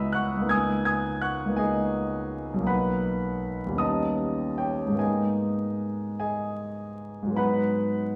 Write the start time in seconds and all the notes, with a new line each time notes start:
Already playing: C#2 G#3 B3 E4 F#4 D#5 E5 A#5 B5 D#6 E6
0.12 F#5 C#6 F#6
0.37 C#2 A#3
0.42 B3 D#4
0.49 G#5 D#6 G#6
0.85 G#5 D#6 G#6
1.22 F#5 C#6 F#6
1.45 C#2 A#3
1.49 B3 D#4
1.57 G#4 D#5 G#5
2.54 B1 F#3
2.59 A#3 D#4
2.67 B4 F#5 B5
3.66 D#2 G3
3.72 B3 C#4
3.77 D#4 D#5 A5 D#6
4.58 G4 C#5 G5
4.86 G#2 G#3
4.93 A#3 B3
4.98 D#4 G#4 D#5 G#5
6.20 G#4 D#5 G#5
7.23 G#2 F#3
7.30 G#3 B3
7.36 D#4 B4 F#5 B5